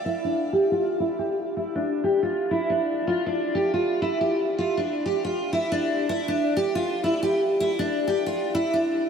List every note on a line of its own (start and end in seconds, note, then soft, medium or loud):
0.06 0.23 E4 medium
0.24 0.51 D4 medium
0.53 0.71 G4 medium
0.72 0.98 F4 medium
1.00 1.18 E4 medium
1.19 1.37 G4 medium
1.57 1.74 E4 medium
1.75 2.02 D4 medium
2.04 2.22 G4 medium
2.23 2.49 F4 medium
2.51 2.69 E4 medium
2.70 3.05 D4 medium
3.07 3.25 F4 medium
3.26 3.53 D4 medium
3.55 3.73 G4 medium
3.74 4.00 F4 medium
4.02 4.20 E4 medium
4.21 4.39 G4 medium
4.58 4.76 F4 medium
4.77 5.04 D4 medium
5.06 5.23 G4 medium
5.25 5.51 F4 medium
5.53 5.71 E4 medium
5.72 6.07 D4 medium
6.09 6.27 E4 medium
6.28 6.55 D4 medium
6.57 6.74 G4 medium
6.75 7.02 F4 medium
7.04 7.22 E4 medium
7.23 7.40 G4 medium
7.60 7.78 E4 medium
7.79 8.06 D4 medium
8.07 8.25 G4 medium
8.26 8.53 F4 medium
8.55 8.72 E4 medium
8.74 9.09 D4 medium